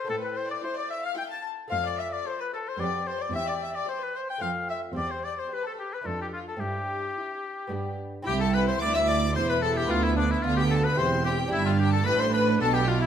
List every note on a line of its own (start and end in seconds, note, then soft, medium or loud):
0.04 0.51 A2 medium
0.04 1.65 A3 soft
0.04 1.66 C4 soft
0.04 1.67 E4 soft
0.04 0.21 A4 medium
0.09 0.51 A2 medium
0.09 0.16 A4 medium
0.19 0.34 B4 medium
0.24 0.38 B4 medium
0.34 0.48 C5 medium
0.34 0.50 C5 medium
0.47 0.62 D5 medium
0.47 0.57 D5 medium
0.61 1.03 E4 medium
0.61 0.76 C5 medium
0.61 0.77 C5 medium
0.61 1.03 C6 medium
0.75 0.89 D5 medium
0.75 0.90 D5 medium
0.88 1.03 E5 medium
1.01 1.16 F5 medium
1.06 1.11 F5 medium
1.15 1.58 E4 medium
1.15 1.30 G5 medium
1.15 1.24 G5 medium
1.15 1.57 C6 medium
1.29 1.43 A5 medium
1.29 1.45 A5 medium
1.68 2.14 F2 medium
1.68 2.75 A3 soft
1.68 2.76 C4 soft
1.68 2.76 F4 soft
1.68 1.83 F5 medium
1.68 1.84 F5 medium
1.72 2.14 F2 soft
1.84 1.98 D5 medium
1.84 2.01 D5 medium
1.97 2.11 E5 medium
1.97 2.15 E5 medium
2.10 2.25 D5 medium
2.10 2.28 D5 medium
2.25 2.66 A4 soft
2.25 2.39 C5 medium
2.25 2.40 C5 medium
2.25 2.66 C6 medium
2.38 2.44 B4 medium
2.38 2.53 B4 medium
2.53 2.58 A4 medium
2.53 2.70 A4 medium
2.66 2.80 C5 medium
2.66 2.81 C5 medium
2.77 3.22 F2 medium
2.77 3.22 F2 soft
2.77 3.31 B3 soft
2.77 3.32 G4 soft
2.77 3.20 G4 medium
2.77 3.07 D5 medium
2.77 3.09 D5 medium
2.81 3.21 B5 medium
3.06 3.20 C5 medium
3.06 3.24 C5 medium
3.19 3.33 D5 medium
3.19 3.35 D5 medium
3.31 3.76 E2 medium
3.31 3.76 E2 soft
3.31 4.38 C4 soft
3.31 4.38 G4 soft
3.31 3.46 E5 medium
3.31 3.48 E5 medium
3.46 3.60 D5 medium
3.46 3.55 D5 medium
3.61 3.74 E5 medium
3.61 3.77 E5 medium
3.73 3.87 D5 medium
3.73 3.88 D5 medium
3.87 4.29 G4 medium
3.87 4.01 C5 medium
3.87 4.04 C5 medium
3.87 4.28 C6 medium
3.99 4.14 B4 medium
3.99 4.18 B4 medium
4.14 4.20 C5 medium
4.14 4.29 C5 medium
4.28 4.42 G5 medium
4.28 4.44 G5 medium
4.38 4.85 F2 medium
4.38 4.93 A3 soft
4.38 4.92 C4 soft
4.38 4.94 F4 soft
4.38 4.48 F5 medium
4.38 4.69 F5 medium
4.38 4.82 C6 medium
4.43 4.84 F2 soft
4.43 4.83 A4 medium
4.69 4.77 E5 medium
4.69 4.82 E5 medium
4.93 5.39 E2 soft
4.93 5.39 E2 medium
4.93 6.01 C4 soft
4.93 6.01 G4 soft
4.93 5.10 D5 medium
4.97 5.13 D5 medium
5.11 5.24 C5 medium
5.11 5.26 C5 medium
5.25 5.41 D5 medium
5.25 5.38 D5 medium
5.38 5.51 C5 medium
5.38 5.55 C5 medium
5.51 5.92 G4 soft
5.51 5.65 B4 medium
5.51 5.66 B4 medium
5.51 5.92 G5 medium
5.67 5.79 A4 medium
5.67 5.72 A4 medium
5.79 5.95 G4 medium
5.79 5.93 G4 medium
5.94 6.08 B4 medium
5.94 5.99 B4 medium
6.01 6.57 A3 soft
6.01 6.56 D4 soft
6.01 6.58 F4 soft
6.06 6.48 F2 soft
6.06 6.49 F2 medium
6.06 6.47 D4 soft
6.06 6.20 A4 medium
6.06 6.20 A4 soft
6.06 6.46 A5 medium
6.21 6.27 G4 medium
6.21 6.34 G4 medium
6.33 6.40 F4 medium
6.33 6.48 F4 medium
6.48 6.62 A4 medium
6.48 6.54 A4 medium
6.57 7.65 C4 soft
6.57 7.66 E4 soft
6.57 7.98 G4 medium
6.61 7.04 G2 medium
6.61 7.04 G2 soft
6.61 7.97 G4 medium
7.16 7.57 E4 soft
7.16 7.57 C6 medium
7.67 8.14 G2 medium
7.67 8.22 B3 soft
7.67 8.23 D4 soft
7.67 8.24 G4 soft
7.67 8.12 B5 soft
7.72 8.14 G2 soft
7.72 8.12 G4 soft
8.22 8.77 C2 medium
8.22 9.84 C4 medium
8.22 9.84 E4 medium
8.22 9.85 G4 medium
8.22 8.38 G5 loud
8.27 9.31 E4 medium
8.27 8.33 G4 medium
8.27 8.39 G4 medium
8.40 8.56 A4 medium
8.40 8.54 A4 medium
8.40 8.53 A5 medium
8.53 8.68 B4 medium
8.53 8.67 B4 medium
8.53 8.59 B5 loud
8.67 8.81 C5 medium
8.67 8.73 C5 medium
8.67 8.80 C6 medium
8.79 9.34 D2 medium
8.79 9.31 D2 medium
8.79 9.34 D2 medium
8.79 8.94 D5 medium
8.79 8.93 D6 loud
8.94 9.08 E5 medium
8.94 9.00 E6 loud
9.08 9.35 D5 medium
9.08 9.35 D6 loud
9.35 9.89 E1 medium
9.35 9.85 E2 medium
9.35 9.90 E2 medium
9.35 9.88 E4 medium
9.35 9.48 C5 medium
9.35 9.51 C5 medium
9.35 9.48 C6 loud
9.49 9.62 B4 medium
9.49 9.64 B4 medium
9.49 9.62 B5 medium
9.61 9.75 A4 medium
9.61 9.79 A4 medium
9.61 9.76 A5 medium
9.76 9.89 G4 medium
9.76 9.92 G4 medium
9.76 9.89 G5 medium
9.85 10.92 B3 medium
9.85 10.93 F4 medium
9.85 10.94 B4 medium
9.89 10.42 D2 medium
9.89 10.40 D2 medium
9.89 10.43 D2 medium
9.89 10.43 B3 medium
9.89 10.03 F4 medium
9.89 10.05 F4 loud
9.89 10.03 F5 loud
10.03 10.17 E4 medium
10.03 10.16 E4 medium
10.03 10.17 E5 medium
10.17 10.32 D4 medium
10.17 10.22 D4 medium
10.17 10.31 D5 medium
10.30 10.43 E4 medium
10.30 10.44 E4 medium
10.30 10.37 E5 medium
10.43 10.97 D2 medium
10.43 10.94 D3 medium
10.43 10.97 D3 medium
10.43 10.97 B3 medium
10.43 10.56 F4 medium
10.43 10.57 F4 medium
10.43 10.58 F5 loud
10.57 10.63 G4 medium
10.57 10.71 G4 medium
10.57 10.71 G5 loud
10.71 10.86 A4 medium
10.71 10.85 A4 medium
10.71 10.84 A5 loud
10.84 10.99 B4 medium
10.84 10.98 B4 medium
10.84 10.98 B5 loud
10.94 11.51 E1 medium
10.94 11.49 C4 medium
10.94 11.47 E4 medium
10.94 11.48 G4 medium
10.94 11.25 C5 loud
10.98 11.48 E2 medium
10.98 11.52 E2 medium
10.98 11.52 C4 medium
10.98 11.07 C5 medium
10.98 11.26 C6 medium
11.25 11.52 G4 medium
11.25 11.37 G4 medium
11.25 11.53 G5 loud
11.48 13.06 D4 medium
11.48 13.06 G4 medium
11.52 12.05 G1 medium
11.52 12.03 G2 medium
11.52 12.05 G2 medium
11.52 12.06 D4 medium
11.52 11.58 E4 loud
11.52 11.65 E4 loud
11.52 11.66 E5 loud
11.66 11.79 F4 medium
11.66 11.72 F4 medium
11.66 11.80 F5 medium
11.79 11.92 G4 medium
11.79 11.93 G4 medium
11.79 11.94 G5 loud
11.93 12.08 A4 medium
11.93 12.06 A4 medium
11.93 12.07 A5 loud
12.05 12.61 A1 medium
12.05 12.61 A2 medium
12.05 12.57 A2 medium
12.05 13.06 D4 medium
12.05 12.19 B4 loud
12.05 12.21 B4 medium
12.05 12.20 B5 loud
12.20 12.33 C5 medium
12.20 12.35 C6 loud
12.33 12.60 B4 medium
12.33 12.42 B5 loud
12.60 13.06 B1 medium
12.60 13.06 B2 medium
12.60 12.73 A4 loud
12.60 12.76 A4 medium
12.60 12.74 A5 loud
12.73 12.87 G4 loud
12.73 12.89 G4 medium
12.73 12.88 G5 loud
12.87 13.01 F4 medium
12.87 13.02 F5 medium
13.00 13.06 E4 loud
13.00 13.06 E4 medium
13.00 13.06 E5 loud